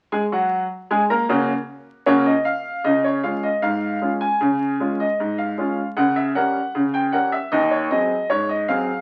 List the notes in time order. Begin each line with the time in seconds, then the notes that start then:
0.12 G#3 G#4 G#5
0.32 F#3 F#4 F#5
0.91 G#3 G#4 G#5
1.10 A#3 A#4 A#5
1.29 C#3 A#3 C#4 F#4
2.06 C#3 A#3 C#4 F#4 C#5
2.26 D#5
2.45 F5
2.84 C#3 D#5
3.04 C#5
3.23 G#3 C#4 F4 F5
3.43 D#5
3.62 G#2 F5
4.02 G#3 C#4 F4
4.21 G#5
4.41 C#3
4.80 G#3 C#4 F4
5.00 D#5
5.20 G#2
5.38 F5
5.58 G#3 C#4 F4
5.97 C#3 F#5
6.16 E5
6.35 G3 C#4 A#4 F#5
6.75 C#3
6.94 G5
7.12 G3 C#4 A#4 F#5
7.32 E5
7.52 D#2 D#5
7.71 C#5
7.91 F#3 C4 G#4 D#5
8.30 G#2 C#5
8.49 D#5
8.68 F#3 C4 G#4 F5